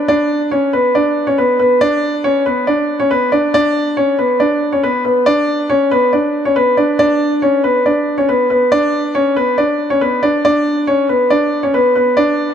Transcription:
0.08 0.49 D4 medium
0.08 0.49 D5 loud
0.51 0.71 C#4 medium
0.51 0.70 C#5 medium
0.73 0.92 B3 medium
0.73 0.92 B4 medium
0.95 1.26 D4 medium
0.95 1.25 D5 medium
1.27 1.37 C#4 medium
1.27 1.36 C#5 medium
1.38 1.57 B3 medium
1.38 1.57 B4 medium
1.59 1.79 B3 medium
1.59 1.78 B4 medium
1.81 2.22 D4 medium
1.81 2.22 D5 loud
2.24 2.44 C#4 medium
2.24 2.43 C#5 medium
2.46 2.65 B3 medium
2.46 2.65 B4 medium
2.67 2.98 D4 medium
2.67 2.98 D5 medium
3.00 3.10 C#4 medium
3.00 3.09 C#5 medium
3.11 3.30 B3 medium
3.11 3.30 B4 medium
3.32 3.51 D4 medium
3.32 3.51 D5 medium
3.54 3.95 D4 medium
3.54 3.95 D5 loud
3.97 4.16 C#4 medium
3.97 4.16 C#5 medium
4.19 4.38 B3 medium
4.19 4.37 B4 medium
4.40 4.71 D4 medium
4.40 4.70 D5 medium
4.72 4.82 C#4 medium
4.72 4.82 C#5 medium
4.83 5.03 B3 medium
4.83 5.02 B4 medium
5.05 5.24 B3 medium
5.05 5.24 B4 medium
5.26 5.67 D4 medium
5.26 5.67 D5 loud
5.70 5.89 C#4 medium
5.70 5.88 C#5 medium
5.91 6.11 B3 medium
5.91 6.10 B4 medium
6.13 6.44 D4 medium
6.13 6.43 D5 medium
6.45 6.55 C#4 medium
6.45 6.55 C#5 medium
6.56 6.75 B3 medium
6.56 6.75 B4 medium
6.77 6.97 D4 medium
6.77 6.96 D5 medium
6.99 7.40 D4 medium
6.99 7.40 D5 loud
7.42 7.62 C#4 medium
7.42 7.61 C#5 medium
7.64 7.83 B3 medium
7.64 7.83 B4 medium
7.86 8.16 D4 medium
7.86 8.16 D5 medium
8.18 8.28 C#4 medium
8.18 8.27 C#5 medium
8.29 8.48 B3 medium
8.29 8.48 B4 medium
8.50 8.69 B3 medium
8.50 8.69 B4 medium
8.72 9.13 D4 medium
8.72 9.12 D5 loud
9.15 9.34 C#4 medium
9.15 9.34 C#5 medium
9.36 9.56 B3 medium
9.36 9.55 B4 medium
9.58 9.89 D4 medium
9.58 9.88 D5 medium
9.90 10.00 C#4 medium
9.90 10.00 C#5 medium
10.01 10.21 B3 medium
10.01 10.20 B4 medium
10.23 10.42 D4 medium
10.23 10.42 D5 medium
10.45 10.86 D4 medium
10.45 10.85 D5 loud
10.87 11.07 C#4 medium
10.87 11.06 C#5 medium
11.09 11.29 B3 medium
11.09 11.28 B4 medium
11.30 11.61 D4 medium
11.30 11.61 D5 loud
11.63 11.73 C#4 medium
11.63 11.73 C#5 medium
11.74 11.93 B3 medium
11.74 11.93 B4 medium
11.95 12.15 B3 medium
11.95 12.14 B4 medium
12.17 12.54 D4 medium
12.17 12.54 D5 loud

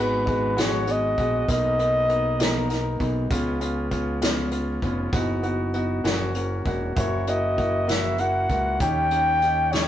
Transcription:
0.00 1.14 G#1 loud
0.00 0.21 G#3 medium
0.00 0.22 B3 medium
0.00 0.22 F#4 medium
0.00 0.62 B4 medium
0.26 0.52 G#3 medium
0.26 0.52 B3 medium
0.26 0.52 F#4 medium
0.26 kick medium
0.26 closed hi-hat soft
0.56 0.82 G#3 medium
0.56 0.82 B3 medium
0.56 0.82 F#4 loud
0.56 0.93 C#5 loud
0.56 snare medium
0.56 closed hi-hat medium
0.87 1.13 G#3 medium
0.87 1.13 B3 medium
0.87 1.13 F#4 medium
0.87 closed hi-hat soft
0.91 1.50 D#5 loud
1.18 1.46 A#1 medium
1.18 1.43 G#3 medium
1.18 1.44 B3 medium
1.18 1.44 F#4 medium
1.18 kick medium
1.18 closed hi-hat medium
1.48 2.96 B1 medium
1.48 1.74 A#3 medium
1.48 1.74 B3 medium
1.48 1.74 D#4 medium
1.48 kick loud
1.48 closed hi-hat medium
1.52 2.45 D#5 loud
1.79 2.04 A#3 medium
1.79 2.04 B3 medium
1.79 2.05 D#4 medium
1.79 closed hi-hat soft
2.09 2.35 A#3 medium
2.09 2.35 B3 medium
2.09 2.35 D#4 medium
2.09 closed hi-hat soft
2.39 2.65 A#3 medium
2.39 2.65 B3 medium
2.39 2.65 D#4 loud
2.39 3.09 A#4 medium
2.39 snare loud
2.39 closed hi-hat medium
2.70 2.95 A#3 medium
2.70 2.95 B3 medium
2.70 2.96 D#4 medium
2.70 snare soft
2.70 closed hi-hat soft
3.00 3.29 B1 medium
3.00 3.25 A#3 medium
3.00 3.26 B3 medium
3.00 3.26 D#4 medium
3.00 kick medium
3.00 closed hi-hat medium
3.31 4.78 C#2 loud
3.31 3.56 B3 medium
3.31 3.56 C#4 medium
3.31 3.56 F4 medium
3.31 kick loud
3.31 closed hi-hat medium
3.60 3.86 B3 medium
3.60 3.86 C#4 medium
3.60 3.87 F4 medium
3.60 closed hi-hat soft
3.91 4.17 B3 medium
3.91 4.17 C#4 medium
3.91 4.17 F4 medium
3.91 kick medium
3.91 closed hi-hat soft
4.22 4.47 B3 medium
4.22 4.47 C#4 medium
4.22 4.47 F4 medium
4.22 snare loud
4.22 closed hi-hat medium
4.51 4.77 B3 medium
4.51 4.78 C#4 medium
4.51 4.78 F4 medium
4.51 closed hi-hat soft
4.82 5.11 F1 medium
4.82 5.08 B3 medium
4.82 5.08 C#4 medium
4.82 5.08 F4 medium
4.82 kick medium
4.82 closed hi-hat soft
5.13 6.01 F#1 loud
5.13 5.39 B3 medium
5.13 5.39 D#4 medium
5.13 5.39 F#4 medium
5.13 kick loud
5.13 closed hi-hat medium
5.43 5.69 B3 medium
5.43 5.69 D#4 medium
5.43 5.69 F#4 medium
5.43 closed hi-hat soft
5.74 6.00 B3 medium
5.74 6.00 D#4 medium
5.74 6.00 F#4 medium
5.74 closed hi-hat soft
6.04 6.62 F#1 medium
6.04 6.30 A#3 medium
6.04 6.30 C#4 medium
6.04 6.30 F#4 loud
6.04 snare loud
6.04 closed hi-hat medium
6.35 6.61 A#3 medium
6.35 6.61 C#4 medium
6.35 6.61 F#4 medium
6.35 closed hi-hat soft
6.65 6.95 E1 medium
6.65 6.92 A#3 medium
6.65 6.92 C#4 medium
6.65 6.92 F#4 medium
6.65 kick medium
6.65 closed hi-hat medium
6.96 8.46 F#1 medium
6.96 7.22 A#3 medium
6.96 7.22 E4 medium
6.96 7.22 F#4 medium
6.96 7.30 C#5 medium
6.96 kick loud
6.96 closed hi-hat medium
7.27 7.53 A#3 medium
7.27 7.53 E4 medium
7.27 7.53 F#4 medium
7.27 7.91 D#5 loud
7.27 closed hi-hat soft
7.57 7.84 A#3 medium
7.57 7.84 E4 medium
7.57 7.84 F#4 medium
7.57 kick medium
7.57 closed hi-hat soft
7.87 8.14 A#3 medium
7.87 8.14 E4 medium
7.87 8.14 F#4 medium
7.87 8.22 E5 loud
7.87 snare medium
7.87 closed hi-hat medium
8.18 8.45 A#3 medium
8.18 8.45 E4 medium
8.18 8.45 F#4 medium
8.18 8.80 F#5 loud
8.18 closed hi-hat soft
8.49 8.78 C#2 medium
8.49 8.76 A#3 medium
8.49 8.76 E4 medium
8.49 8.76 F#4 medium
8.49 kick medium
8.49 closed hi-hat medium
8.80 9.88 D#2 medium
8.80 9.06 C#4 medium
8.80 9.06 D#4 medium
8.80 9.07 G4 medium
8.80 9.74 G5 loud
8.80 kick loud
8.80 closed hi-hat medium
9.11 9.37 C#4 medium
9.11 9.37 D#4 medium
9.11 9.37 G4 medium
9.11 closed hi-hat soft
9.42 9.68 C#4 medium
9.42 9.68 D#4 medium
9.42 9.68 G4 medium
9.42 closed hi-hat soft
9.72 9.88 C#4 medium
9.72 9.88 D#4 medium
9.72 9.88 G4 loud
9.72 9.88 C#5 loud
9.72 snare loud
9.72 closed hi-hat medium

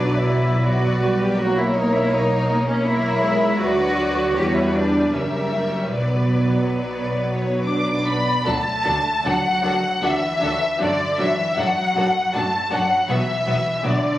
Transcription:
0.00 3.56 B1 soft
0.00 0.60 F#3 soft
0.00 0.13 D4 soft
0.00 0.59 B4 soft
0.00 0.59 D5 soft
0.13 0.64 E4 medium
0.63 1.00 F#3 soft
0.63 1.20 F#4 medium
0.63 1.38 B4 soft
0.63 1.37 D5 soft
1.02 1.38 G3 soft
1.20 1.39 G4 medium
1.38 2.84 A#3 soft
1.38 1.57 F#4 medium
1.38 2.81 A#4 soft
1.38 2.83 C#5 soft
1.57 1.75 E4 medium
1.75 1.93 D#4 medium
1.93 2.11 E4 medium
2.11 2.65 D#4 medium
2.66 2.84 C#4 medium
2.82 3.21 A#3 soft
2.82 3.59 E4 medium
2.82 3.57 A#4 medium
2.82 3.57 C#5 medium
3.22 3.59 G#3 medium
3.58 4.33 D2 medium
3.58 4.35 F#3 soft
3.58 4.37 F#4 medium
3.58 4.33 B4 medium
3.58 4.34 D5 medium
4.34 5.13 E2 medium
4.34 5.13 G3 medium
4.34 4.46 G4 medium
4.34 5.11 B4 soft
4.34 4.73 C#5 medium
4.46 4.55 F#4 medium
4.55 4.64 E4 medium
4.64 4.74 F#4 medium
4.73 5.13 D4 medium
4.73 5.13 D5 soft
5.12 5.93 F#1 medium
5.12 5.93 G3 soft
5.12 5.21 C#4 soft
5.12 5.94 A#4 soft
5.12 5.94 E5 soft
5.20 5.29 D4 soft
5.29 5.37 C#4 soft
5.38 5.46 D4 soft
5.47 5.55 C#4 soft
5.55 5.63 D4 soft
5.63 5.94 C#4 soft
5.93 8.22 B1 soft
5.93 8.25 F#3 soft
5.93 7.60 B3 soft
5.93 8.21 B4 soft
5.93 6.68 D5 soft
6.77 7.31 D5 soft
7.36 7.63 C#5 soft
7.64 8.03 D4 soft
7.64 8.03 D6 soft
7.92 8.46 D5 soft
8.06 8.46 B3 soft
8.06 8.46 B5 medium
8.45 8.55 D2 medium
8.45 8.55 F#3 soft
8.45 9.25 A3 medium
8.45 8.54 D4 soft
8.45 8.53 F#4 soft
8.45 8.53 A4 soft
8.45 9.25 A5 medium
8.84 8.94 D2 soft
8.84 8.93 F#3 soft
8.84 8.93 D4 soft
8.84 8.93 F#4 soft
8.84 8.92 A4 soft
9.25 9.33 D2 medium
9.25 10.03 F#3 medium
9.25 9.33 F#3 soft
9.25 9.33 D4 soft
9.25 9.33 F#4 soft
9.25 9.33 A4 soft
9.25 10.03 F#5 medium
9.63 9.72 D2 soft
9.63 9.71 F#3 soft
9.63 9.71 D4 soft
9.63 9.71 F#4 soft
9.63 9.72 A4 soft
10.02 10.10 D2 soft
10.02 10.79 E3 medium
10.02 10.10 F#3 soft
10.02 10.10 D4 soft
10.02 10.11 F#4 soft
10.02 10.11 A4 soft
10.02 10.82 E5 medium
10.40 10.50 D2 soft
10.40 10.49 F#3 soft
10.40 10.48 D4 soft
10.40 10.51 F#4 soft
10.40 10.51 A4 soft
10.79 10.88 F#2 medium
10.79 11.19 D3 medium
10.79 10.88 F#3 soft
10.79 10.87 D4 soft
10.79 10.89 F#4 soft
10.79 10.89 A4 soft
10.79 11.19 D5 medium
11.18 11.27 F#2 soft
11.18 11.58 E3 soft
11.18 11.26 F#3 soft
11.18 11.27 D4 soft
11.18 11.29 F#4 soft
11.18 11.29 A4 soft
11.18 11.57 E5 medium
11.57 11.65 F#2 medium
11.57 11.65 F#3 soft
11.57 12.33 F#3 medium
11.57 11.65 D4 soft
11.57 11.68 F#4 soft
11.57 11.67 A4 soft
11.57 12.35 F#5 medium
11.95 12.04 F#2 soft
11.95 12.03 F#3 soft
11.95 12.03 D4 soft
11.95 12.06 F#4 soft
11.95 12.05 A4 soft
12.33 12.42 F#2 medium
12.33 12.42 F#3 soft
12.33 12.71 A3 medium
12.33 12.42 D4 soft
12.33 12.42 F#4 soft
12.33 12.42 A4 soft
12.33 12.71 A5 medium
12.71 12.80 F#2 soft
12.71 13.08 F#3 medium
12.71 12.79 F#3 soft
12.71 12.79 D4 soft
12.71 12.80 F#4 soft
12.71 12.79 A4 soft
12.71 13.09 F#5 medium
13.08 13.17 B1 medium
13.08 13.82 E3 medium
13.08 13.17 F#3 soft
13.08 13.17 B3 soft
13.08 13.18 F#4 soft
13.08 13.17 B4 soft
13.08 13.84 E5 medium
13.46 13.54 B1 soft
13.46 13.55 F#3 soft
13.46 13.54 B3 soft
13.46 13.55 F#4 soft
13.46 13.55 B4 soft
13.83 13.92 B1 medium
13.83 14.18 D3 medium
13.83 13.92 F#3 soft
13.83 13.92 B3 soft
13.83 13.92 F#4 soft
13.83 13.92 B4 soft
13.83 14.18 D5 medium

